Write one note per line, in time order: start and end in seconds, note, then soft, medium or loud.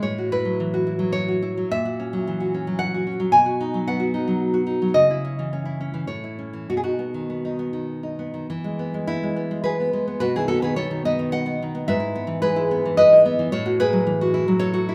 0.03 1.65 A2 medium
0.03 0.29 C#5 medium
0.18 0.73 F#4 soft
0.32 0.86 E4 soft
0.32 1.10 B4 medium
0.45 0.98 F#3 soft
0.60 1.42 E3 soft
0.74 1.27 F#4 soft
0.87 1.41 E4 soft
0.99 1.56 F#3 soft
1.12 1.66 C#5 medium
1.28 1.69 F#4 soft
1.42 1.69 E4 soft
1.57 1.70 F#3 soft
1.71 3.28 A#2 medium
1.71 2.74 E5 medium
1.85 2.39 F#4 soft
2.00 2.53 C#4 soft
2.13 2.66 F#3 soft
2.27 3.06 E3 soft
2.40 2.93 F#4 soft
2.54 3.06 C#4 soft
2.67 3.19 F#3 soft
2.79 3.29 F#5 medium
2.94 3.32 F#4 soft
3.07 3.32 C#4 soft
3.20 3.32 F#3 soft
3.32 4.92 B2 medium
3.32 3.84 G#5 medium
3.46 3.99 F#4 soft
3.61 4.13 D#4 soft
3.74 4.26 F#3 soft
3.88 4.68 B3 soft
3.88 4.38 F#5 medium
4.00 4.53 F#4 soft
4.14 4.65 D#4 soft
4.28 4.81 F#3 soft
4.54 4.95 F#4 soft
4.67 4.94 D#4 soft
4.82 4.95 F#3 soft
4.94 6.04 C#3 medium
4.94 6.03 D#5 medium
5.11 5.64 E4 soft
5.25 5.52 C#4 soft
5.39 5.92 E3 soft
5.53 5.79 C#4 soft
5.65 6.07 E4 soft
5.81 6.08 C#4 soft
5.94 6.07 E3 soft
6.07 6.66 A2 soft
6.07 6.65 C#5 medium
6.24 6.68 E4 soft
6.39 6.68 C#4 soft
6.53 6.68 E3 soft
6.70 8.47 B2 soft
6.70 6.76 F#4 medium
6.77 6.83 G#4 soft
6.83 7.44 D#4 soft
6.83 7.84 F#4 medium
6.99 7.28 B3 soft
7.14 7.72 D#3 soft
7.30 7.58 B3 soft
7.45 8.02 D#4 soft
7.59 8.18 B3 soft
7.73 8.33 D#3 soft
8.03 8.50 D#4 soft
8.19 8.50 B3 soft
8.34 8.49 D#3 soft
8.50 9.93 E3 medium
8.64 8.93 G#3 soft
8.79 9.08 B3 soft
8.94 9.22 G#3 soft
9.07 9.35 B3 soft
9.07 9.63 E4 medium
9.23 9.50 G#3 soft
9.36 9.65 B3 soft
9.51 9.92 G#3 soft
9.64 9.80 G#4 medium
9.64 10.18 B4 medium
9.80 10.06 B3 soft
9.93 10.21 G#3 soft
10.08 10.21 B3 soft
10.20 11.84 B2 medium
10.20 10.34 F#4 medium
10.20 10.35 B4 medium
10.36 10.61 D#3 soft
10.36 10.49 E4 soft
10.36 10.48 G#4 medium
10.48 10.76 B3 soft
10.48 10.62 F#4 medium
10.48 10.62 A4 medium
10.62 10.90 D#3 soft
10.62 10.77 G#4 medium
10.62 10.76 B4 medium
10.76 11.04 B3 soft
10.76 11.03 A4 medium
10.76 11.04 C#5 medium
10.91 11.18 D#3 soft
11.05 11.45 B3 soft
11.05 11.32 B4 medium
11.05 11.32 D#5 medium
11.19 11.61 D#3 soft
11.32 11.84 D#5 medium
11.32 11.85 F#5 medium
11.46 11.73 B3 soft
11.62 11.89 D#3 soft
11.75 11.88 B3 soft
11.88 13.48 G#2 medium
11.88 12.39 B4 medium
11.88 12.40 E5 loud
12.00 12.41 E4 soft
12.15 12.43 B3 soft
12.27 12.84 E3 soft
12.42 13.25 G#3 soft
12.42 12.71 G#4 medium
12.42 12.95 B4 medium
12.56 13.11 E4 medium
12.71 12.98 B3 medium
12.86 13.38 E3 medium
12.97 13.49 B4 medium
12.97 13.50 D#5 medium
13.13 13.53 E4 medium
13.25 13.53 B3 soft
13.39 13.52 E3 medium
13.52 14.95 A2 medium
13.52 13.78 A4 medium
13.52 13.78 C#5 medium
13.66 13.80 F#4 medium
13.80 14.33 E4 medium
13.80 14.57 G#4 medium
13.80 14.57 B4 loud
13.93 14.06 F#3 medium
14.07 14.47 E3 medium
14.21 14.72 F#4 medium
14.34 14.88 E4 medium
14.48 14.95 F#3 medium
14.59 14.95 A4 medium
14.59 14.95 C#5 loud
14.74 14.95 F#4 medium
14.89 14.95 E4 medium